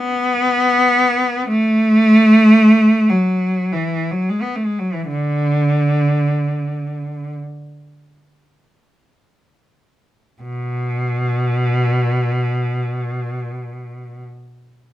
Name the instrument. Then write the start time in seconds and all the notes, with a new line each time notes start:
cello
Already playing: B3
1.48 A3
3.10 F#3
3.72 E3
4.11 F#3
4.29 G#3
4.42 B3
4.56 A3
4.65 G#3
4.79 F#3
4.94 E3
5.08 D3
10.43 B2